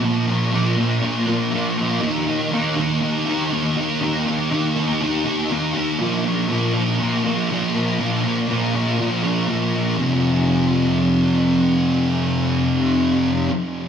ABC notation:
X:1
M:4/4
L:1/8
Q:1/4=121
K:Bbdor
V:1 name="Distorted electric guitar"
[B,,F,B,] [F,B,] [B,,F,B,] [F,B,] [B,,F,B,] [B,,F,B,] [B,,F,B,] [F,B,] | [E,B,E] [B,E] [E,B,E] [B,E] [E,B,E] [E,B,E] [E,B,E] [B,E] | [E,B,E] [B,E] [E,B,E] [B,E] [E,B,E] [E,B,E] [E,B,E] [B,E] | [B,,F,B,] [F,B,] [B,,F,B,] [F,B,] [B,,F,B,] [B,,F,B,] [B,,F,B,] [F,B,] |
[B,,F,B,] [F,B,] [B,,F,B,] [F,B,] [B,,F,B,] [B,,F,B,] [B,,F,B,] [F,B,] | [F,,C,F,]8- | [F,,C,F,]8 |]